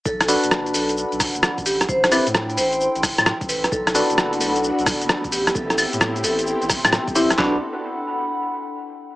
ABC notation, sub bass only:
X:1
M:4/4
L:1/16
Q:"Swing 16ths" 1/4=131
K:Bphr
V:1 name="Sub bass" clef=bass
B,,,3 F,,,3 B,,,3 B,,, z F,,, z A,,,3 | A,,,3 A,,3 A,,,3 A,,, z A,, z A,,,3 | B,,,3 F,,,3 B,,,3 B,,, z F,,, z A,,,3 | A,,,3 A,,3 A,,,3 A,,, z A,, z A,,,3 |
B,,,2 z12 z2 |]